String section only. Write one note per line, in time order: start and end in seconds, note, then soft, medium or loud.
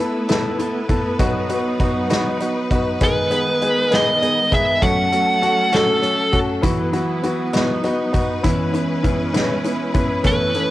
0.00 1.17 A3 medium
0.00 2.97 B3 medium
0.00 1.16 E4 medium
0.00 4.78 B4 medium
1.20 3.00 F#3 medium
1.20 2.99 D#4 medium
3.02 4.81 D#3 medium
3.02 4.81 G#3 medium
3.02 4.81 B3 medium
4.83 8.41 F#3 medium
4.83 6.62 A3 medium
4.83 6.62 C#4 medium
4.83 6.62 A4 medium
6.63 8.42 B3 medium
6.63 7.53 E4 medium
6.63 10.71 B4 medium
7.54 8.43 D#4 medium
8.45 10.24 G#3 medium
8.45 10.23 C#4 medium
8.45 10.71 E4 medium
10.25 10.71 A3 medium
10.25 10.71 C#4 medium